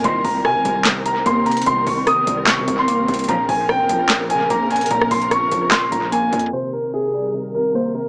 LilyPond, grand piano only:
\new Staff \with { instrumentName = "Grand piano" } { \time 4/4 \key c \phrygian \tempo 4 = 148 c'''8 bes''8 aes''4 r8 bes''8 c'''8 bes''8 | c'''8 des'''8 ees'''4 des'''8. c'''4~ c'''16 | bes''8 aes''8 g''4 r8 aes''8 bes''8 aes''8 | bes''8 c'''8 des'''4 c'''8 bes''8 aes''4 |
c''8 bes'8 aes'4 r8 bes'8 c''8 bes'8 | }